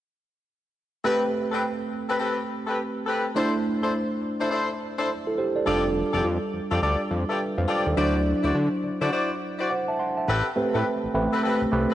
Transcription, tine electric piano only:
1.04 3.31 A3 medium
1.04 3.32 C4 medium
1.04 3.32 G4 medium
1.04 3.32 B4 medium
3.35 5.33 A3 medium
3.35 5.34 D4 medium
3.35 5.06 E4 medium
3.35 5.06 C5 medium
5.27 5.37 E4 medium
5.27 5.37 A4 medium
5.38 5.55 G4 medium
5.38 5.55 C5 medium
5.56 5.67 A4 soft
5.56 5.83 D5 medium
5.65 7.93 G3 medium
5.65 7.93 D4 medium
5.65 7.93 F4 medium
5.65 7.08 A4 medium
7.29 7.56 B4 medium
7.29 7.56 E5 medium
7.58 7.68 C5 medium
7.58 7.68 F5 medium
7.69 7.85 D5 medium
7.69 7.85 G5 medium
7.87 8.14 A4 medium
7.87 8.14 D5 medium
7.96 9.95 F#3 medium
7.96 9.95 D4 medium
7.96 9.95 E4 medium
7.96 9.67 C5 medium
9.70 9.88 C5 soft
9.70 9.87 F#5 medium
9.88 9.99 E5 medium
9.88 9.99 A5 medium
9.99 10.16 F#5 medium
9.99 10.16 C6 medium
10.17 10.45 E5 soft
10.17 10.44 A5 medium
10.56 11.05 A3 medium
10.56 11.05 C4 medium
10.56 11.05 G4 medium
10.56 11.05 B4 medium
11.14 11.63 A3 medium
11.14 11.63 C4 medium
11.14 11.63 G4 medium
11.14 11.63 B4 loud
11.72 11.94 A3 medium
11.72 11.94 C4 medium
11.72 11.94 G4 medium
11.72 11.94 B4 loud

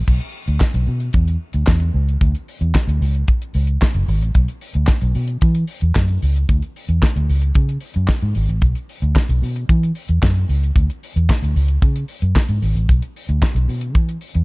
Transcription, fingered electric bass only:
0.08 0.18 B1 medium
0.48 0.58 D2 medium
0.74 0.85 B1 medium
0.87 1.09 B2 medium
1.14 1.35 E2 medium
1.54 1.65 D2 medium
1.68 1.89 E2 medium
1.94 2.16 C#2 medium
2.21 2.32 D2 medium
2.61 2.72 E2 medium
2.87 2.98 D2 medium
3.01 3.22 C#2 medium
3.55 3.76 C#2 medium
3.95 4.05 F#1 medium
4.08 4.19 G#1 loud
4.22 4.32 A1 medium
4.35 4.46 B1 medium
4.75 4.86 D2 medium
5.02 5.13 B1 medium
5.16 5.37 B2 medium
5.42 5.63 E3 loud
5.82 5.93 E2 medium
5.96 6.17 F#2 medium
6.23 6.44 C#2 medium
6.49 6.60 D2 medium
6.89 6.99 E2 medium
7.16 7.26 D2 medium
7.29 7.50 C#2 medium
7.55 7.77 C#3 medium
7.96 8.06 F#2 medium
8.22 8.33 G#2 medium
8.36 8.46 G#1 medium
8.49 8.59 A1 medium
8.62 8.73 B1 medium
9.02 9.13 D2 medium
9.29 9.40 B1 medium
9.42 9.64 B2 medium
9.69 9.90 E3 loud
10.09 10.20 E2 medium
10.23 10.44 F#2 medium
10.49 10.70 C#2 medium
10.76 10.86 D2 medium
11.16 11.26 E2 medium
11.42 11.53 D2 medium
11.56 11.77 C#2 medium
11.82 12.03 C#3 loud
12.22 12.33 F#2 medium
12.49 12.59 G#2 medium
12.62 12.73 G#1 medium
12.75 12.86 A1 medium
12.89 12.99 B1 medium
13.29 13.39 D2 medium
13.55 13.65 B1 loud
13.68 13.95 B2 medium
13.95 14.16 E3 medium
14.35 14.44 E2 loud

